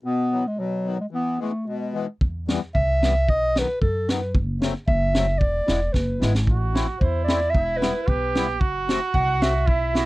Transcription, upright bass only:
0, 0, Header, 1, 2, 480
1, 0, Start_track
1, 0, Key_signature, 1, "minor"
1, 0, Tempo, 540541
1, 37, Time_signature, 2, 2, 24, 8
1, 2437, Tempo, 533333
1, 9017, End_track
2, 0, Start_track
2, 0, Title_t, "Upright bass"
2, 0, Program_c, 0, 32
2, 1965, Note_on_c, 0, 40, 63
2, 2273, Note_off_c, 0, 40, 0
2, 2443, Note_on_c, 0, 36, 77
2, 2924, Note_off_c, 0, 36, 0
2, 2924, Note_on_c, 0, 35, 91
2, 3234, Note_off_c, 0, 35, 0
2, 3402, Note_on_c, 0, 42, 70
2, 3878, Note_on_c, 0, 30, 85
2, 3891, Note_off_c, 0, 42, 0
2, 4190, Note_off_c, 0, 30, 0
2, 4356, Note_on_c, 0, 30, 87
2, 4834, Note_off_c, 0, 30, 0
2, 4834, Note_on_c, 0, 28, 80
2, 4996, Note_off_c, 0, 28, 0
2, 5085, Note_on_c, 0, 28, 63
2, 5294, Note_off_c, 0, 28, 0
2, 5315, Note_on_c, 0, 30, 74
2, 5540, Note_off_c, 0, 30, 0
2, 5563, Note_on_c, 0, 32, 81
2, 5794, Note_off_c, 0, 32, 0
2, 5794, Note_on_c, 0, 33, 84
2, 6109, Note_off_c, 0, 33, 0
2, 6277, Note_on_c, 0, 40, 89
2, 6759, Note_on_c, 0, 28, 83
2, 6772, Note_off_c, 0, 40, 0
2, 7071, Note_off_c, 0, 28, 0
2, 7238, Note_on_c, 0, 35, 84
2, 7716, Note_off_c, 0, 35, 0
2, 7716, Note_on_c, 0, 30, 84
2, 8028, Note_off_c, 0, 30, 0
2, 8197, Note_on_c, 0, 36, 83
2, 8673, Note_off_c, 0, 36, 0
2, 8673, Note_on_c, 0, 35, 77
2, 8987, Note_off_c, 0, 35, 0
2, 9017, End_track
0, 0, End_of_file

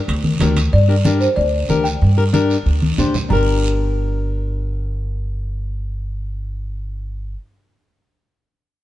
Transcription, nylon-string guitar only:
0, 0, Header, 1, 2, 480
1, 0, Start_track
1, 0, Key_signature, -2, "minor"
1, 0, Tempo, 321716
1, 1088, Time_signature, 4, 2, 24, 8
1, 13176, End_track
2, 0, Start_track
2, 0, Title_t, "Nylon-string guitar"
2, 0, Program_c, 0, 24
2, 603, Note_on_c, 0, 62, 79
2, 613, Note_on_c, 0, 67, 67
2, 617, Note_on_c, 0, 70, 86
2, 858, Note_off_c, 0, 62, 0
2, 861, Note_off_c, 0, 67, 0
2, 864, Note_off_c, 0, 70, 0
2, 1318, Note_on_c, 0, 62, 59
2, 1325, Note_on_c, 0, 67, 60
2, 1332, Note_on_c, 0, 70, 68
2, 1407, Note_off_c, 0, 62, 0
2, 1410, Note_off_c, 0, 67, 0
2, 1414, Note_off_c, 0, 70, 0
2, 1563, Note_on_c, 0, 62, 68
2, 1571, Note_on_c, 0, 67, 65
2, 1581, Note_on_c, 0, 70, 72
2, 1901, Note_off_c, 0, 62, 0
2, 1906, Note_off_c, 0, 67, 0
2, 1908, Note_off_c, 0, 70, 0
2, 2521, Note_on_c, 0, 62, 61
2, 2528, Note_on_c, 0, 67, 59
2, 2534, Note_on_c, 0, 70, 72
2, 2776, Note_off_c, 0, 62, 0
2, 2780, Note_off_c, 0, 67, 0
2, 2782, Note_off_c, 0, 70, 0
2, 3237, Note_on_c, 0, 62, 57
2, 3246, Note_on_c, 0, 67, 55
2, 3249, Note_on_c, 0, 70, 63
2, 3327, Note_off_c, 0, 62, 0
2, 3329, Note_off_c, 0, 67, 0
2, 3332, Note_off_c, 0, 70, 0
2, 3479, Note_on_c, 0, 62, 76
2, 3486, Note_on_c, 0, 67, 72
2, 3492, Note_on_c, 0, 70, 80
2, 3819, Note_off_c, 0, 62, 0
2, 3823, Note_off_c, 0, 67, 0
2, 3826, Note_off_c, 0, 70, 0
2, 4449, Note_on_c, 0, 62, 76
2, 4459, Note_on_c, 0, 67, 63
2, 4465, Note_on_c, 0, 72, 82
2, 4701, Note_off_c, 0, 62, 0
2, 4703, Note_off_c, 0, 67, 0
2, 4708, Note_off_c, 0, 72, 0
2, 4908, Note_on_c, 0, 62, 67
2, 4932, Note_on_c, 0, 67, 58
2, 4967, Note_on_c, 0, 70, 75
2, 10936, Note_off_c, 0, 62, 0
2, 10948, Note_off_c, 0, 67, 0
2, 10966, Note_off_c, 0, 70, 0
2, 13176, End_track
0, 0, End_of_file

